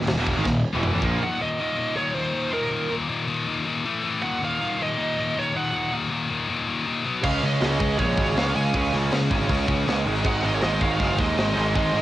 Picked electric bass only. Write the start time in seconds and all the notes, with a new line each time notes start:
0.08 D#1
0.18 E1
0.37 G#1
0.45 D#1
0.74 E1
0.94 A1
1.02 A#1
7.24 C#2
7.43 C#2
7.61 C#2
7.80 C#2
7.99 A#1
8.17 G#1
8.37 C#2
8.56 C#2
8.74 C#2
8.94 C#2
9.13 C#2
9.31 G#1
9.49 C#2
9.68 C#2
9.87 C#2
10.06 G#1
10.24 G#1
10.43 G#1
10.62 G#1
10.81 G#1
11.00 F#1
11.19 D#2
11.37 G#1
11.57 G#1
11.75 G#1
11.93 G#1